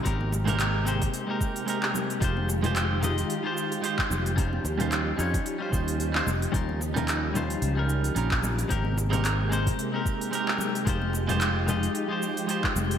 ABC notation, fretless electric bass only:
X:1
M:4/4
L:1/8
Q:"Swing 16ths" 1/4=111
K:Fm
V:1 name="Fretless electric bass" clef=bass
A,,,4 z4 | F,,,4 z3 F,,,- | F,,, E,,2 F,, z E,,2 F,,, | E,,4 D,,2 B,,,2 |
A,,,4 z4 | F,,,4 z3 F,,, |]